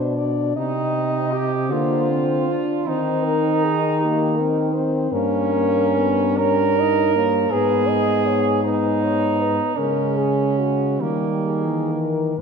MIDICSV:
0, 0, Header, 1, 5, 480
1, 0, Start_track
1, 0, Tempo, 773196
1, 351, Time_signature, 6, 3, 24, 8
1, 1787, Tempo, 749064
1, 3227, Tempo, 828729
1, 4187, Tempo, 750000
1, 6107, Tempo, 833333
1, 7067, Tempo, 933126
1, 7564, End_track
2, 0, Start_track
2, 0, Title_t, "French horn"
2, 0, Program_c, 0, 60
2, 0, Note_on_c, 0, 72, 44
2, 111, Note_off_c, 0, 72, 0
2, 116, Note_on_c, 0, 74, 45
2, 347, Note_off_c, 0, 74, 0
2, 351, Note_on_c, 0, 75, 59
2, 960, Note_off_c, 0, 75, 0
2, 1065, Note_on_c, 0, 72, 58
2, 1611, Note_off_c, 0, 72, 0
2, 1784, Note_on_c, 0, 72, 54
2, 2024, Note_on_c, 0, 70, 51
2, 2034, Note_off_c, 0, 72, 0
2, 2276, Note_on_c, 0, 68, 51
2, 2285, Note_off_c, 0, 70, 0
2, 2512, Note_on_c, 0, 67, 49
2, 2521, Note_off_c, 0, 68, 0
2, 2744, Note_on_c, 0, 70, 51
2, 2753, Note_off_c, 0, 67, 0
2, 2980, Note_on_c, 0, 72, 45
2, 2990, Note_off_c, 0, 70, 0
2, 3226, Note_on_c, 0, 70, 65
2, 3235, Note_off_c, 0, 72, 0
2, 3958, Note_off_c, 0, 70, 0
2, 3963, Note_on_c, 0, 73, 56
2, 4196, Note_on_c, 0, 75, 52
2, 4206, Note_off_c, 0, 73, 0
2, 4426, Note_off_c, 0, 75, 0
2, 4431, Note_on_c, 0, 73, 47
2, 4661, Note_on_c, 0, 71, 52
2, 4671, Note_off_c, 0, 73, 0
2, 4892, Note_on_c, 0, 75, 53
2, 4902, Note_off_c, 0, 71, 0
2, 5139, Note_on_c, 0, 73, 51
2, 5149, Note_off_c, 0, 75, 0
2, 5390, Note_on_c, 0, 71, 50
2, 5399, Note_off_c, 0, 73, 0
2, 5632, Note_on_c, 0, 73, 47
2, 5641, Note_off_c, 0, 71, 0
2, 5873, Note_on_c, 0, 71, 46
2, 5883, Note_off_c, 0, 73, 0
2, 6093, Note_off_c, 0, 71, 0
2, 6097, Note_on_c, 0, 70, 54
2, 6330, Note_on_c, 0, 68, 44
2, 6339, Note_off_c, 0, 70, 0
2, 6572, Note_on_c, 0, 66, 41
2, 6580, Note_off_c, 0, 68, 0
2, 6811, Note_on_c, 0, 67, 41
2, 6819, Note_off_c, 0, 66, 0
2, 6995, Note_off_c, 0, 67, 0
2, 7071, Note_on_c, 0, 68, 38
2, 7310, Note_on_c, 0, 70, 40
2, 7317, Note_off_c, 0, 68, 0
2, 7548, Note_on_c, 0, 71, 49
2, 7556, Note_off_c, 0, 70, 0
2, 7564, Note_off_c, 0, 71, 0
2, 7564, End_track
3, 0, Start_track
3, 0, Title_t, "French horn"
3, 0, Program_c, 1, 60
3, 0, Note_on_c, 1, 62, 61
3, 85, Note_off_c, 1, 62, 0
3, 354, Note_on_c, 1, 63, 60
3, 819, Note_on_c, 1, 67, 61
3, 828, Note_off_c, 1, 63, 0
3, 1063, Note_on_c, 1, 65, 69
3, 1072, Note_off_c, 1, 67, 0
3, 1785, Note_on_c, 1, 63, 68
3, 1795, Note_off_c, 1, 65, 0
3, 2984, Note_off_c, 1, 63, 0
3, 3230, Note_on_c, 1, 61, 78
3, 3950, Note_on_c, 1, 70, 85
3, 3959, Note_off_c, 1, 61, 0
3, 4650, Note_on_c, 1, 68, 82
3, 4659, Note_off_c, 1, 70, 0
3, 5372, Note_off_c, 1, 68, 0
3, 5376, Note_on_c, 1, 63, 68
3, 6104, Note_on_c, 1, 61, 68
3, 6113, Note_off_c, 1, 63, 0
3, 6816, Note_on_c, 1, 58, 56
3, 6825, Note_off_c, 1, 61, 0
3, 7376, Note_off_c, 1, 58, 0
3, 7543, Note_on_c, 1, 56, 49
3, 7564, Note_off_c, 1, 56, 0
3, 7564, End_track
4, 0, Start_track
4, 0, Title_t, "French horn"
4, 0, Program_c, 2, 60
4, 0, Note_on_c, 2, 62, 44
4, 354, Note_on_c, 2, 60, 42
4, 363, Note_off_c, 2, 62, 0
4, 1071, Note_on_c, 2, 58, 42
4, 1081, Note_off_c, 2, 60, 0
4, 1305, Note_on_c, 2, 60, 48
4, 1314, Note_off_c, 2, 58, 0
4, 1548, Note_off_c, 2, 60, 0
4, 1551, Note_on_c, 2, 62, 47
4, 1779, Note_on_c, 2, 60, 45
4, 1789, Note_off_c, 2, 62, 0
4, 2340, Note_off_c, 2, 60, 0
4, 2523, Note_on_c, 2, 58, 49
4, 2761, Note_on_c, 2, 60, 54
4, 2771, Note_off_c, 2, 58, 0
4, 2983, Note_off_c, 2, 60, 0
4, 2987, Note_on_c, 2, 60, 50
4, 3241, Note_on_c, 2, 58, 50
4, 3249, Note_off_c, 2, 60, 0
4, 3468, Note_off_c, 2, 58, 0
4, 3472, Note_on_c, 2, 58, 49
4, 3713, Note_on_c, 2, 59, 54
4, 3721, Note_off_c, 2, 58, 0
4, 3960, Note_on_c, 2, 61, 50
4, 3968, Note_off_c, 2, 59, 0
4, 4193, Note_on_c, 2, 63, 49
4, 4203, Note_off_c, 2, 61, 0
4, 4427, Note_on_c, 2, 58, 47
4, 4436, Note_off_c, 2, 63, 0
4, 4658, Note_on_c, 2, 59, 44
4, 4668, Note_off_c, 2, 58, 0
4, 5379, Note_off_c, 2, 59, 0
4, 5383, Note_on_c, 2, 59, 45
4, 6093, Note_off_c, 2, 59, 0
4, 6111, Note_on_c, 2, 56, 42
4, 6816, Note_on_c, 2, 55, 38
4, 6824, Note_off_c, 2, 56, 0
4, 7172, Note_on_c, 2, 52, 35
4, 7180, Note_off_c, 2, 55, 0
4, 7542, Note_on_c, 2, 51, 38
4, 7550, Note_off_c, 2, 52, 0
4, 7564, Note_off_c, 2, 51, 0
4, 7564, End_track
5, 0, Start_track
5, 0, Title_t, "French horn"
5, 0, Program_c, 3, 60
5, 0, Note_on_c, 3, 47, 40
5, 335, Note_off_c, 3, 47, 0
5, 347, Note_on_c, 3, 48, 48
5, 1060, Note_on_c, 3, 50, 45
5, 1070, Note_off_c, 3, 48, 0
5, 1619, Note_off_c, 3, 50, 0
5, 1778, Note_on_c, 3, 51, 54
5, 3197, Note_off_c, 3, 51, 0
5, 3222, Note_on_c, 3, 43, 51
5, 4624, Note_off_c, 3, 43, 0
5, 4646, Note_on_c, 3, 44, 51
5, 5991, Note_off_c, 3, 44, 0
5, 6100, Note_on_c, 3, 49, 45
5, 6804, Note_on_c, 3, 51, 41
5, 6813, Note_off_c, 3, 49, 0
5, 7541, Note_off_c, 3, 51, 0
5, 7546, Note_on_c, 3, 44, 38
5, 7564, Note_off_c, 3, 44, 0
5, 7564, End_track
0, 0, End_of_file